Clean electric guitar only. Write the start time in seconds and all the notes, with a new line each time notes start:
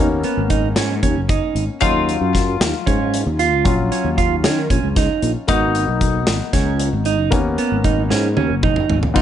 0.24 B3
0.50 D#4
0.77 C#4
1.03 C#4
1.30 D#4
1.81 D#4
2.86 C#4
3.39 F4
3.92 C#4
4.18 F4
4.44 C#4
4.71 C#4
4.97 D#4
5.49 D#4
6.53 C#4
7.06 D#4
7.58 B3
7.84 D#4
8.10 C#4
8.37 C#4
8.63 D#4
9.16 D#4